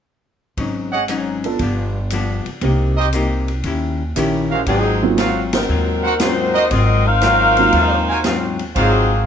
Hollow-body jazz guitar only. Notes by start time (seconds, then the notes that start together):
0.57 G#2 F#3 C#4 D#4
1.08 G#2 F#3 C#4 D#4
1.60 G2 F3 B3 D4
2.12 G2 F3 B3 D4
2.63 C3 A#3 D#4 G4
3.14 C3 A#3 D#4 G4
3.65 D#3 C#4 E4 G4
4.16 D#3 C#4 E4 G4
4.67 G#2 F#3 C4 F4
5.17 G#2 F#3 C4 F4
5.69 G#2 F#3 C4 F4
6.20 G#2 F#3 C4 F4
6.71 G#2 F#3 C4 F4
7.22 G#2 F#3 C4 F4
7.73 G#2 F#3 C4 F4
8.25 G#2 F#3 C4 F4
8.76 G#2 F#3 C4 F4